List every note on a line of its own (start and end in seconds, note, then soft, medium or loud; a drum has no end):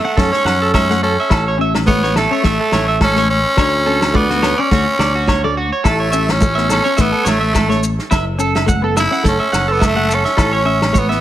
0.00 0.20 A3 medium
0.04 0.15 F#5 medium
0.04 muted clean electric guitar stroke medium
0.17 0.30 F#2 loud
0.17 0.40 A3 medium
0.17 0.73 C#4 loud
0.17 0.30 A4 medium
0.17 kick medium
0.17 snare medium
0.17 muted conga soft
0.32 0.43 C#5 medium
0.32 snare soft
0.45 1.16 F#2 medium
0.45 0.58 F#5 medium
0.45 snare medium
0.45 low agogo medium
0.62 0.72 A4 medium
0.74 1.00 C#4 loud
0.74 0.87 E5 medium
0.74 kick medium
0.74 snare medium
0.74 muted conga soft
0.74 high conga medium
0.74 low agogo medium
0.90 1.12 A3 medium
0.90 1.01 F#5 medium
0.90 snare soft
1.03 1.57 C#4 medium
1.03 1.16 A4 medium
1.20 1.30 E5 medium
1.30 2.25 A1 loud
1.30 1.53 E4 medium
1.30 1.44 A4 loud
1.30 kick medium
1.30 snare medium
1.30 muted conga soft
1.30 low agogo medium
1.48 1.58 C#5 medium
1.58 1.81 C#4 medium
1.58 1.73 E5 medium
1.58 muted conga soft
1.75 snare medium
1.75 low agogo medium
1.86 2.00 A3 medium
1.86 2.14 B3 loud
1.86 2.01 C#5 medium
1.86 kick loud
1.86 high conga medium
2.03 2.26 B3 medium
2.03 2.14 C#5 medium
2.03 snare soft
2.16 2.98 A3 loud
2.16 2.30 A4 medium
2.16 snare medium
2.16 low agogo medium
2.31 2.41 C#4 medium
2.31 2.43 C#5 medium
2.43 2.58 A1 loud
2.43 2.66 A3 medium
2.43 2.58 E5 medium
2.43 kick loud
2.43 snare medium
2.43 muted conga soft
2.60 2.71 A4 medium
2.72 3.44 A1 loud
2.72 2.86 C#5 medium
2.72 snare medium
2.72 high conga medium
2.72 low agogo medium
2.88 2.99 E5 medium
3.01 3.29 C#4 loud
3.01 3.14 A4 medium
3.01 kick loud
3.01 snare medium
3.01 muted conga soft
3.01 high conga medium
3.01 low agogo medium
3.16 3.39 A3 medium
3.16 3.28 C#5 medium
3.16 snare soft
3.30 4.18 C#4 loud
3.57 4.52 D2 loud
3.57 3.80 D4 medium
3.57 3.72 C#5 loud
3.57 kick medium
3.57 snare medium
3.57 muted conga soft
3.57 low agogo medium
3.86 4.09 C#4 medium
3.86 3.99 A4 medium
3.86 muted conga soft
4.01 snare medium
4.01 low agogo medium
4.13 4.26 A3 medium
4.13 4.62 B3 loud
4.13 4.28 D5 medium
4.13 kick loud
4.13 high conga medium
4.13 low conga medium
4.30 4.53 B3 medium
4.30 4.41 F#4 medium
4.30 snare soft
4.42 4.55 C#5 medium
4.42 snare medium
4.42 low agogo medium
4.58 4.69 C#4 medium
4.58 5.58 C#4 loud
4.58 4.69 D5 medium
4.71 4.85 D2 loud
4.71 4.94 A3 medium
4.71 4.84 F#4 medium
4.71 kick loud
4.71 snare medium
4.71 muted conga soft
4.99 5.70 D2 loud
4.99 5.13 D5 medium
4.99 snare medium
4.99 low agogo medium
5.15 5.26 F#4 medium
5.28 5.41 C#5 medium
5.28 kick medium
5.28 snare medium
5.28 muted conga soft
5.28 high conga medium
5.28 low agogo medium
5.44 5.66 A3 medium
5.44 5.55 D5 medium
5.57 5.70 F#4 medium
5.72 5.83 C#5 medium
5.84 6.79 A1 loud
5.84 6.07 E4 medium
5.84 5.97 A4 loud
5.84 kick medium
5.84 snare medium
5.84 muted conga soft
5.84 low agogo medium
5.84 maracas medium
5.89 6.33 A3 medium
6.00 6.11 C#5 medium
6.12 6.35 C#4 medium
6.12 6.25 E5 loud
6.12 muted conga soft
6.12 maracas loud
6.29 6.71 C#4 loud
6.29 snare medium
6.29 low agogo medium
6.29 maracas soft
6.41 6.54 A3 medium
6.41 kick medium
6.41 high conga loud
6.41 maracas medium
6.55 6.80 B3 medium
6.55 6.67 E5 medium
6.55 snare soft
6.69 7.02 C#4 loud
6.69 6.82 A4 medium
6.69 snare medium
6.69 low agogo medium
6.69 maracas loud
6.84 6.96 C#4 medium
6.84 6.95 C#5 medium
6.84 maracas soft
6.97 7.11 A1 loud
6.97 7.21 A3 loud
6.97 7.30 B3 loud
6.97 7.10 E5 medium
6.97 kick medium
6.97 snare medium
6.97 muted conga soft
6.97 maracas medium
7.12 7.23 A4 medium
7.24 7.97 A1 loud
7.24 7.38 C#5 medium
7.24 snare medium
7.24 high conga medium
7.24 low agogo medium
7.24 maracas loud
7.28 7.84 A3 medium
7.40 7.52 E5 medium
7.54 7.67 A4 medium
7.54 kick medium
7.54 snare medium
7.54 muted conga soft
7.54 high conga medium
7.54 low agogo medium
7.54 maracas medium
7.69 7.92 A3 medium
7.69 7.81 C#5 medium
7.69 snare soft
7.83 maracas loud
7.99 snare soft
8.11 9.06 F#1 loud
8.11 8.34 E4 medium
8.11 8.24 E5 loud
8.11 kick medium
8.11 snare medium
8.11 muted conga soft
8.11 low agogo medium
8.11 maracas medium
8.39 8.62 C#4 medium
8.39 8.53 A4 medium
8.39 muted conga soft
8.39 maracas medium
8.55 8.66 E5 medium
8.55 snare medium
8.55 low agogo medium
8.55 maracas soft
8.66 8.79 A3 medium
8.66 8.81 F#5 medium
8.66 kick loud
8.66 high conga medium
8.66 low conga medium
8.66 maracas medium
8.82 9.05 B3 medium
8.82 8.94 A4 medium
8.97 9.25 E4 loud
8.97 9.10 E5 medium
8.97 snare medium
8.97 low agogo medium
8.97 maracas loud
9.11 9.22 C#4 medium
9.11 9.23 F#5 medium
9.11 maracas soft
9.23 9.38 F#1 loud
9.23 9.46 A3 medium
9.23 9.38 A4 medium
9.23 kick loud
9.23 snare medium
9.23 muted conga soft
9.23 maracas medium
9.29 9.74 C#4 loud
9.40 9.50 E5 medium
9.53 10.24 F#1 medium
9.53 9.66 F#5 medium
9.53 snare medium
9.53 low agogo medium
9.53 maracas loud
9.68 9.79 A4 medium
9.72 9.88 B3 loud
9.80 9.93 E5 medium
9.80 kick medium
9.80 snare medium
9.80 muted conga soft
9.80 high conga medium
9.80 low agogo medium
9.80 maracas medium
9.86 10.16 A3 loud
9.96 10.19 A3 medium
9.96 10.07 F#5 medium
10.09 10.22 A4 medium
10.09 maracas medium
10.14 11.00 C#4 loud
10.25 10.36 E5 medium
10.25 snare soft
10.37 11.21 A1 loud
10.37 10.60 E4 loud
10.37 10.50 A4 loud
10.37 kick loud
10.37 snare medium
10.37 muted conga soft
10.37 low agogo medium
10.37 maracas medium
10.53 10.63 C#5 medium
10.65 10.88 C#4 medium
10.65 10.79 E5 medium
10.65 muted conga soft
10.82 snare medium
10.82 low agogo medium
10.93 11.06 A3 medium
10.93 11.07 C#5 medium
10.93 kick medium
10.93 high conga medium
10.93 maracas medium
10.99 11.21 B3 medium
11.09 11.21 B3 medium
11.09 11.20 E5 medium
11.09 snare soft